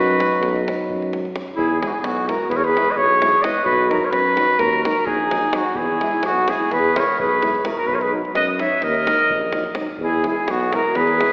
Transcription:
Already playing: F#2 F#3 D#4 F#4 B4
0.08 davul high
0.20 davul high
0.32 davul high
0.41 B1, davul high, davul low
0.56 davul high
0.68 davul high
0.89 F#2, davul low
1.02 davul high
1.13 davul high
1.25 davul high
1.36 davul high
1.48 davul high
1.56 E2 E4 G#4, davul low
1.80 G#3 E4 G#4, davul high
1.86 D#4 F#4
1.92 E4 G#4
2.00 B1 B3 G#4
2.04 F#4, davul high
2.17 davul high
2.27 G#3 E4 F#4 A#4, davul high
2.49 E2 G#4 B4, davul high, davul low
2.56 A#4 C#5
2.63 G#4 B4, davul high
2.75 G#3 E4, davul high
2.90 B4 D#5
2.96 B1 G#4 C#5, davul low
3.21 G#3 E4, davul high
3.33 davul high
3.42 G#3 E4 B4 D#5, davul high
3.63 B1 F#4 B4, davul low
3.89 F#3 D#4 F#4 A#4, davul high
4.05 A#4 C#5
4.10 F#2 F#4 B4, davul high
4.26 davul high
4.36 F#3 D#4, davul high
4.59 D#2 F#4 A#4, davul high, davul low
4.73 davul high
4.84 F#3 D#4 F#4 A#4, davul high
5.06 A#1 D#4 G#4, davul low
5.31 F#3 D#4, davul high
5.42 davul high
5.52 F#3 D#4 F#4, davul high
5.75 E2 E4 G#4, davul low
6.01 G#3 E4, davul high
6.23 B1 B3 F#4, davul high
6.48 G#3 E4 G#4, davul high
6.70 E2 G#4 B4, davul high, davul low
6.84 davul high
6.95 G#3 E4 A#4 C#5, davul high
7.19 B1 G#4 B4, davul low
7.41 G#3 E4, davul high
7.55 davul high
7.64 G#3 E4 F#4 A#4, davul high
7.71 F#4 A#4
7.78 F#4 A#4
7.85 B1 B4, davul low
7.90 F#4 A#4
7.94 C#5
7.99 G#4 B4, davul high
8.11 F#3 D#4
8.25 davul high
8.34 F#2 B4 D#5, davul high
8.47 davul high
8.59 F#3 D#4 C#5 E5, davul high
8.82 D#2 A#4 D#5, davul high, davul low
8.94 davul high
9.07 F#3 D#4, davul high
9.19 davul high
9.30 A#1, davul low
9.41 davul high
9.53 F#3 D#4, davul high
9.64 davul high
9.75 F#3 D#4, davul high
9.87 davul high
9.98 E2 E4 G#4, davul low
10.24 G#3 E4 G#4, davul high
10.48 B1 B3 F#4, davul high
10.60 davul high
10.72 G#3 E4 F#4 A#4, davul high
10.95 E2 G#4 B4, davul high, davul low
11.07 davul high
11.20 G#3 E4, davul high

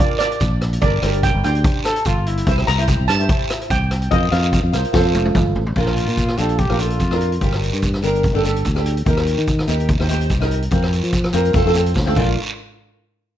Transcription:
Already playing: D4 F4 A#4
0.00 D5, long guiro
0.19 D5, cross-stick, closed hi-hat, short guiro
0.32 closed hi-hat
0.40 A#1, kick, closed hi-hat, short guiro
0.61 cross-stick, closed hi-hat
0.73 closed hi-hat
0.81 G1 D4 G4 A#4 D5, kick, closed hi-hat, long guiro
1.01 G1 D4 G4 A#4, cross-stick, closed hi-hat
1.13 closed hi-hat
1.23 G5, kick, closed hi-hat, short guiro
1.35 G1
1.43 D2 D4 G4 C5 G5, cross-stick, closed hi-hat
1.55 closed hi-hat
1.64 kick, closed hi-hat, long guiro
1.85 A4, cross-stick, closed hi-hat, short guiro
1.96 closed hi-hat
2.05 G1 F4, kick, closed hi-hat, short guiro
2.26 E4, closed hi-hat
2.37 closed hi-hat
2.46 C2 E4 G4 C5, kick, closed hi-hat, long guiro
2.58 cross-stick
2.67 C2 A#5, cross-stick, closed hi-hat
2.78 E4 G4 C5, closed hi-hat
2.88 kick, closed hi-hat, short guiro
3.00 C2
3.08 G2 A5, cross-stick, closed hi-hat, short guiro
3.19 E4 G4 C5, closed hi-hat
3.29 kick, closed hi-hat, long guiro
3.50 cross-stick, closed hi-hat, short guiro
3.61 closed hi-hat
3.70 C2 G5, kick, closed hi-hat, short guiro
3.91 cross-stick, closed hi-hat
4.02 closed hi-hat
4.11 F2 F4 A#4 C5 D#5, kick, closed hi-hat, long guiro
4.31 F2 F4 A#4 C5 F5, cross-stick, closed hi-hat
4.43 closed hi-hat
4.53 kick, closed hi-hat, short guiro
4.64 F2
4.72 C2 F4 A#4 C5, cross-stick, closed hi-hat, short guiro
4.84 closed hi-hat
4.93 F2 F4 A4 C5, kick, snare, long guiro
5.14 F1, high tom, short guiro
5.25 high tom
5.35 G1, kick, mid tom, short guiro
5.56 A1, floor tom
5.66 floor tom
5.76 A#1 D4 F4 A#4, kick, crash, long guiro
5.87 cross-stick
5.96 closed hi-hat
6.08 A#2, closed hi-hat
6.17 kick, closed hi-hat, short guiro
6.28 cross-stick
6.37 A#1 D4 F4 G4 A4, closed hi-hat, short guiro
6.49 closed hi-hat
6.58 G4, kick, closed hi-hat, long guiro
6.69 A#1 D4 F4 A#4, cross-stick
6.79 D4 F4 A4, closed hi-hat, short guiro
6.90 closed hi-hat
7.00 F2, kick, closed hi-hat, short guiro
7.11 D4 F4 A#4, cross-stick
7.21 closed hi-hat
7.32 closed hi-hat
7.41 G1 D4 G4 A#4, kick, closed hi-hat, long guiro
7.52 cross-stick
7.62 closed hi-hat
7.73 G2, closed hi-hat
7.82 kick, closed hi-hat, short guiro
7.94 cross-stick
8.02 G1 D4 G4 A#4, closed hi-hat, short guiro
8.15 closed hi-hat
8.23 kick, closed hi-hat, long guiro
8.33 G1 D4 G4 A4
8.43 D4 G4 A4, closed hi-hat, short guiro
8.56 closed hi-hat
8.65 D2, kick, closed hi-hat, short guiro
8.75 D4 G4 A4, cross-stick
8.86 closed hi-hat
8.97 closed hi-hat
9.06 D#2 D#4 G4 A#4, kick, closed hi-hat, long guiro
9.17 cross-stick
9.27 closed hi-hat
9.38 D#3, closed hi-hat
9.47 kick, closed hi-hat, short guiro
9.59 cross-stick
9.67 D#2 D#4 G4 A#4, closed hi-hat, short guiro
9.80 closed hi-hat
9.89 kick, closed hi-hat, long guiro
9.99 D#2 D#4 G4 C5, cross-stick
10.09 D#4 G4 C5, closed hi-hat, short guiro
10.21 closed hi-hat
10.30 C2, kick, closed hi-hat, short guiro
10.40 D#4 G4 A#4, cross-stick
10.51 closed hi-hat
10.62 closed hi-hat
10.71 F2 C4 F4 A#4, kick, closed hi-hat, long guiro
10.83 cross-stick
10.92 closed hi-hat
11.03 F3, closed hi-hat
11.13 kick, closed hi-hat, short guiro
11.24 cross-stick
11.33 F2 C4 F4 A#4, closed hi-hat, short guiro
11.45 closed hi-hat
11.53 F2 C4 F4 A4, kick, closed hi-hat, long guiro
11.65 F2 C4 F4 A4
11.74 C4 F4 A4, closed hi-hat, short guiro
11.86 closed hi-hat
11.94 D2, kick, snare, short guiro
12.05 C4 F4 A4, high tom
12.15 A#1 D4 F4 A#4, kick, crash, long guiro

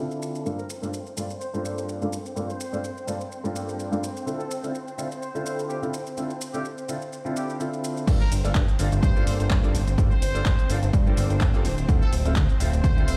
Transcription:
Already playing: D3 C4 D4 D5
0.00 E4 F4 A4
0.11 shaker
0.22 shaker
0.35 shaker
0.45 G2 A#3 C4 D4 F4 A4 C5, shaker
0.58 A#4, shaker
0.70 shaker
0.82 G2 A#3 D4 F4 A4, shaker
0.94 shaker
1.07 shaker
1.17 G2 A#3 D4 F4 A4, shaker
1.30 shaker
1.41 C5, shaker
1.53 G2 A#3 D4 F4 A4, shaker
1.65 C5, shaker
1.78 C5, shaker
1.89 shaker
2.02 G2 A#3 D4 F4 A4, shaker
2.13 shaker
2.26 shaker
2.36 G2 A#3 D4 F4 A4, shaker
2.49 C5, shaker
2.60 shaker
2.72 G2 A#3 D4 F4 A4, shaker
2.84 shaker
2.97 shaker
3.07 G2 A#3 D4 F4 A4, shaker
3.21 shaker
3.32 shaker
3.44 G2 A#3 D4 F4 A4, shaker
3.56 shaker
3.69 shaker
3.80 shaker
3.91 G2 A#3 D4 F4 A4, shaker
4.04 shaker
4.17 shaker
4.26 D3 C4 E4 F4 A4, shaker
4.39 A4, shaker
4.51 shaker
4.63 D3 C4 E4 F4 A4, shaker
4.75 shaker
4.88 shaker
4.98 D3 C4 E4 F4 A4, shaker
5.12 shaker
5.21 C5, shaker
5.35 D3 C4 E4 F4 A4, shaker
5.46 C5, shaker
5.59 shaker
5.69 G4, shaker
5.82 D3 C4 E4 F4 A4, shaker
5.94 shaker
6.07 shaker
6.17 D3 C4 E4 F4 A4, shaker
6.30 shaker
6.41 shaker
6.53 D3 C4 E4 F4 G4 A4, shaker
6.65 shaker
6.78 shaker
6.88 D3 C4 E4 F4 A4, shaker
7.02 shaker
7.13 shaker
7.25 D3 C4 E4 F4 A4, shaker
7.36 G4, shaker
7.49 G4, shaker
7.59 D3 C4 E4 F4 A4, shaker
7.73 shaker
7.84 shaker
7.97 shaker
8.07 G2 A#3 C4 D4 F4 A4 C5, kick, closed hi-hat, crash, shaker
8.20 A#4, shaker
8.32 G1, open hi-hat, shaker
8.44 G1 A#3 D4 F4 A4, closed hi-hat, shaker
8.55 G2, kick, clap, closed hi-hat, shaker
8.68 closed hi-hat, shaker
8.79 G1 A#3 D4 F4 A4, open hi-hat, shaker
8.92 G1, closed hi-hat, shaker
9.03 G2 C5, kick, closed hi-hat, shaker
9.16 A#3 D4 F4 A4, shaker
9.27 G1 C5, open hi-hat, shaker
9.39 G1 C5, closed hi-hat, shaker
9.50 G2, kick, clap, closed hi-hat, shaker
9.63 A#3 D4 F4 A4, closed hi-hat, shaker
9.74 G1, open hi-hat, shaker
9.88 G1, closed hi-hat, shaker
9.97 G2 A#3 D4 F4 A4, kick, closed hi-hat, shaker
10.11 C5, shaker
10.22 G1, open hi-hat, shaker
10.34 G1 A#3 D4 F4 A4, closed hi-hat, shaker
10.46 G2, kick, clap, closed hi-hat, shaker
10.59 closed hi-hat, shaker
10.69 G1 A#3 D4 F4 A4, open hi-hat, shaker
10.83 G1, closed hi-hat, shaker
10.93 G2, kick, closed hi-hat, shaker
11.06 A#3 D4 F4 A4, shaker
11.17 G1, open hi-hat, shaker
11.30 G1, closed hi-hat, shaker
11.41 G2, kick, clap, closed hi-hat, shaker
11.54 A#3 D4 F4 A4, closed hi-hat, shaker
11.65 D1, open hi-hat, shaker
11.78 D1, closed hi-hat, shaker
11.88 D2 C4 E4 F4 A4, kick, closed hi-hat, shaker
12.02 A4, shaker
12.12 D1, open hi-hat, shaker
12.25 D1 C4 E4 F4 A4, closed hi-hat, shaker
12.36 D2, kick, clap, closed hi-hat, shaker
12.49 closed hi-hat, shaker
12.60 D1 C4 E4 F4 A4, open hi-hat, shaker
12.73 D1, closed hi-hat, shaker
12.84 D2 C5, kick, closed hi-hat, shaker
12.97 C4 E4 F4 A4, shaker
13.07 D1 C5, open hi-hat, shaker

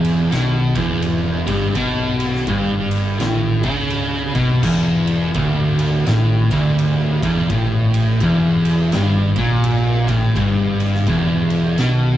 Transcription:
Already playing: E1 E2
0.05 ride
0.31 B1 B2, snare, ride
0.75 E1 E2, kick, ride
1.02 ride
1.47 G1 G2, kick, ride
1.75 B1 B2, kick, ride
2.20 ride
2.35 snare
2.46 G1 G2, kick, ride
2.91 ride
3.20 A1 A2, snare, ride
3.63 C#2 C#3, kick, ride
3.90 ride
4.35 B1 B2, kick, ride
4.63 E1 E2, kick, crash
5.07 ride
5.34 D1 D2, kick, ride
5.79 ride
6.07 A1 A2, snare, ride
6.51 D1 D2, kick, ride
6.79 ride
7.23 E1 E2, kick, ride
7.50 A1 A2, kick, ride
7.94 ride
8.20 E1 E2, kick, ride
8.65 ride
8.92 G1 G2, snare, ride
9.36 A#1 A#2, kick, ride
9.64 ride
10.08 A1 A2, kick, ride
10.36 G1 G2, kick, ride
10.80 ride
10.95 snare
11.06 E1 E2, kick, ride
11.50 ride
11.78 B1 B2, snare, ride

